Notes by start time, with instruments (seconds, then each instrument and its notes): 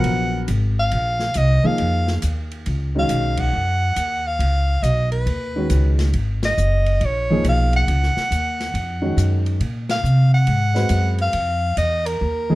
Already playing: grand piano F3 F#3 B3 A#4, soprano saxophone F#5
0.04 upright bass A#1, ride
0.48 upright bass G#1, hi-hat pedal, ride
0.79 soprano saxophone F5
0.91 upright bass A#1, ride
1.20 snare
1.34 upright bass C2, soprano saxophone D#5, hi-hat pedal, ride
1.64 grand piano F3 A#3 D#4 G#4, soprano saxophone F5
1.78 upright bass F2, ride
2.07 snare
2.22 upright bass D#2, hi-hat pedal, ride
2.51 ride
2.66 upright bass C#2, ride
2.95 grand piano D#3 G#3 C#4 F#4, soprano saxophone F5
3.09 upright bass B1, hi-hat pedal, ride
3.37 soprano saxophone F#5, kick, ride
3.53 upright bass F#2
3.96 upright bass D#2, hi-hat pedal, ride
4.27 soprano saxophone F5
4.39 upright bass C#2, ride
4.82 upright bass B1, soprano saxophone D#5, hi-hat pedal, ride
5.12 soprano saxophone B4, ride
5.26 upright bass D#2, ride
5.56 grand piano D#3 G#3 C#4 F#4
5.70 upright bass C#2, hi-hat pedal, ride
5.99 snare, ride
6.13 upright bass G#1, ride
6.43 soprano saxophone D#5, snare, ride
6.58 upright bass F#1, hi-hat pedal
6.86 ride
7.01 upright bass A#1, ride
7.05 soprano saxophone C#5
7.30 grand piano F3 A#3 D#4 G#4
7.44 upright bass B1, hi-hat pedal, ride
7.49 soprano saxophone F5
7.73 soprano saxophone F#5, ride
7.88 upright bass C#2, ride
8.03 snare
8.16 muted upright bass stroke, snare
8.31 upright bass D#2, hi-hat pedal, ride
8.60 snare, ride
8.74 upright bass F2, ride
9.02 grand piano D#3 G#3 C#4 F#4
9.17 upright bass F#2, hi-hat pedal, ride
9.46 ride
9.60 upright bass A#2, ride
9.89 soprano saxophone F5, snare, ride
10.03 upright bass C3, hi-hat pedal
10.34 soprano saxophone F#5
10.47 upright bass G#2, ride
10.75 grand piano G#3 C4 F#4 B4, snare
10.89 upright bass F#2, hi-hat pedal, ride
11.18 soprano saxophone F5, ride
11.33 upright bass F2, ride
11.77 upright bass E2, soprano saxophone D#5, hi-hat pedal, ride
12.06 soprano saxophone A#4, ride
12.21 upright bass D#2
12.50 grand piano F3 A#3 D#4 G#4